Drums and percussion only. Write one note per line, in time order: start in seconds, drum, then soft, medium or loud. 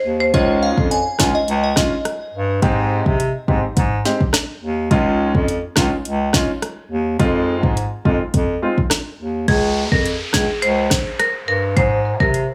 0.34 kick loud
0.34 closed hi-hat medium
0.78 kick medium
0.91 closed hi-hat medium
1.19 kick loud
1.19 cross-stick loud
1.19 snare loud
1.48 closed hi-hat medium
1.76 kick loud
1.76 cross-stick loud
1.76 snare loud
2.05 cross-stick loud
2.05 closed hi-hat medium
2.62 kick loud
2.62 closed hi-hat medium
3.06 kick loud
3.20 closed hi-hat medium
3.48 kick medium
3.77 kick loud
3.77 closed hi-hat medium
4.05 snare medium
4.21 kick medium
4.33 cross-stick loud
4.33 snare loud
4.33 closed hi-hat medium
4.91 kick loud
4.91 closed hi-hat medium
5.35 kick loud
5.48 closed hi-hat medium
5.76 kick medium
5.76 cross-stick loud
5.76 snare loud
6.05 closed hi-hat medium
6.33 kick loud
6.33 cross-stick loud
6.33 snare loud
6.62 cross-stick loud
6.62 closed hi-hat medium
7.20 kick loud
7.20 closed hi-hat medium
7.63 kick loud
7.77 closed hi-hat medium
8.05 kick medium
8.34 kick medium
8.34 closed hi-hat medium
8.78 kick medium
8.90 cross-stick loud
8.90 snare loud
8.90 closed hi-hat medium
9.48 kick loud
9.48 closed hi-hat medium
9.92 kick medium
10.06 closed hi-hat medium
10.33 kick medium
10.33 cross-stick loud
10.33 snare loud
10.62 closed hi-hat medium
10.90 kick medium
10.90 cross-stick medium
10.90 snare loud
11.20 cross-stick loud
11.20 closed hi-hat medium
11.77 kick loud
11.77 closed hi-hat medium
12.20 kick medium
12.34 closed hi-hat medium